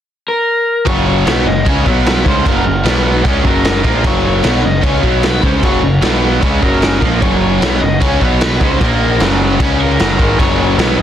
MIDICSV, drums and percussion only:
0, 0, Header, 1, 2, 480
1, 0, Start_track
1, 0, Key_signature, -6, "major"
1, 0, Tempo, 396825
1, 1044, Time_signature, 4, 2, 24, 8
1, 13331, End_track
2, 0, Start_track
2, 0, Title_t, "Drums"
2, 1049, Note_on_c, 9, 36, 103
2, 1050, Note_on_c, 9, 49, 59
2, 1170, Note_off_c, 9, 36, 0
2, 1171, Note_off_c, 9, 49, 0
2, 1534, Note_on_c, 9, 49, 58
2, 1545, Note_on_c, 9, 38, 108
2, 1655, Note_off_c, 9, 49, 0
2, 1666, Note_off_c, 9, 38, 0
2, 2011, Note_on_c, 9, 36, 100
2, 2011, Note_on_c, 9, 49, 58
2, 2132, Note_off_c, 9, 36, 0
2, 2132, Note_off_c, 9, 49, 0
2, 2251, Note_on_c, 9, 36, 99
2, 2372, Note_off_c, 9, 36, 0
2, 2496, Note_on_c, 9, 49, 63
2, 2507, Note_on_c, 9, 38, 117
2, 2617, Note_off_c, 9, 49, 0
2, 2628, Note_off_c, 9, 38, 0
2, 2732, Note_on_c, 9, 36, 102
2, 2853, Note_off_c, 9, 36, 0
2, 2972, Note_on_c, 9, 36, 104
2, 2978, Note_on_c, 9, 49, 65
2, 3093, Note_off_c, 9, 36, 0
2, 3099, Note_off_c, 9, 49, 0
2, 3454, Note_on_c, 9, 49, 64
2, 3465, Note_on_c, 9, 38, 101
2, 3575, Note_off_c, 9, 49, 0
2, 3586, Note_off_c, 9, 38, 0
2, 3930, Note_on_c, 9, 36, 113
2, 3940, Note_on_c, 9, 49, 55
2, 4051, Note_off_c, 9, 36, 0
2, 4061, Note_off_c, 9, 49, 0
2, 4170, Note_on_c, 9, 36, 98
2, 4291, Note_off_c, 9, 36, 0
2, 4410, Note_on_c, 9, 49, 58
2, 4421, Note_on_c, 9, 38, 112
2, 4531, Note_off_c, 9, 49, 0
2, 4542, Note_off_c, 9, 38, 0
2, 4650, Note_on_c, 9, 36, 111
2, 4771, Note_off_c, 9, 36, 0
2, 4891, Note_on_c, 9, 36, 115
2, 4892, Note_on_c, 9, 49, 54
2, 5011, Note_off_c, 9, 36, 0
2, 5013, Note_off_c, 9, 49, 0
2, 5367, Note_on_c, 9, 49, 64
2, 5378, Note_on_c, 9, 38, 106
2, 5488, Note_off_c, 9, 49, 0
2, 5499, Note_off_c, 9, 38, 0
2, 5847, Note_on_c, 9, 36, 104
2, 5849, Note_on_c, 9, 49, 56
2, 5968, Note_off_c, 9, 36, 0
2, 5970, Note_off_c, 9, 49, 0
2, 6089, Note_on_c, 9, 36, 90
2, 6210, Note_off_c, 9, 36, 0
2, 6326, Note_on_c, 9, 49, 61
2, 6337, Note_on_c, 9, 38, 115
2, 6447, Note_off_c, 9, 49, 0
2, 6458, Note_off_c, 9, 38, 0
2, 6570, Note_on_c, 9, 36, 117
2, 6691, Note_off_c, 9, 36, 0
2, 6808, Note_on_c, 9, 36, 111
2, 6812, Note_on_c, 9, 49, 67
2, 6929, Note_off_c, 9, 36, 0
2, 6933, Note_off_c, 9, 49, 0
2, 7285, Note_on_c, 9, 49, 62
2, 7296, Note_on_c, 9, 38, 94
2, 7406, Note_off_c, 9, 49, 0
2, 7417, Note_off_c, 9, 38, 0
2, 7772, Note_on_c, 9, 36, 112
2, 7774, Note_on_c, 9, 49, 57
2, 7893, Note_off_c, 9, 36, 0
2, 7895, Note_off_c, 9, 49, 0
2, 8013, Note_on_c, 9, 36, 104
2, 8134, Note_off_c, 9, 36, 0
2, 8250, Note_on_c, 9, 49, 55
2, 8261, Note_on_c, 9, 38, 107
2, 8371, Note_off_c, 9, 49, 0
2, 8382, Note_off_c, 9, 38, 0
2, 8492, Note_on_c, 9, 36, 99
2, 8613, Note_off_c, 9, 36, 0
2, 8734, Note_on_c, 9, 36, 104
2, 8736, Note_on_c, 9, 49, 57
2, 8855, Note_off_c, 9, 36, 0
2, 8857, Note_off_c, 9, 49, 0
2, 9218, Note_on_c, 9, 49, 55
2, 9229, Note_on_c, 9, 38, 113
2, 9339, Note_off_c, 9, 49, 0
2, 9350, Note_off_c, 9, 38, 0
2, 9694, Note_on_c, 9, 36, 100
2, 9695, Note_on_c, 9, 49, 65
2, 9815, Note_off_c, 9, 36, 0
2, 9816, Note_off_c, 9, 49, 0
2, 9935, Note_on_c, 9, 36, 94
2, 10056, Note_off_c, 9, 36, 0
2, 10173, Note_on_c, 9, 49, 65
2, 10184, Note_on_c, 9, 38, 113
2, 10294, Note_off_c, 9, 49, 0
2, 10305, Note_off_c, 9, 38, 0
2, 10412, Note_on_c, 9, 36, 106
2, 10533, Note_off_c, 9, 36, 0
2, 10654, Note_on_c, 9, 36, 113
2, 10658, Note_on_c, 9, 49, 66
2, 10775, Note_off_c, 9, 36, 0
2, 10779, Note_off_c, 9, 49, 0
2, 11131, Note_on_c, 9, 49, 60
2, 11142, Note_on_c, 9, 38, 102
2, 11252, Note_off_c, 9, 49, 0
2, 11263, Note_off_c, 9, 38, 0
2, 11612, Note_on_c, 9, 36, 106
2, 11614, Note_on_c, 9, 49, 68
2, 11733, Note_off_c, 9, 36, 0
2, 11734, Note_off_c, 9, 49, 0
2, 12091, Note_on_c, 9, 49, 58
2, 12102, Note_on_c, 9, 38, 118
2, 12212, Note_off_c, 9, 49, 0
2, 12223, Note_off_c, 9, 38, 0
2, 12330, Note_on_c, 9, 36, 111
2, 12451, Note_off_c, 9, 36, 0
2, 12570, Note_on_c, 9, 36, 112
2, 12575, Note_on_c, 9, 49, 60
2, 12691, Note_off_c, 9, 36, 0
2, 12696, Note_off_c, 9, 49, 0
2, 13052, Note_on_c, 9, 49, 55
2, 13062, Note_on_c, 9, 38, 109
2, 13173, Note_off_c, 9, 49, 0
2, 13183, Note_off_c, 9, 38, 0
2, 13331, End_track
0, 0, End_of_file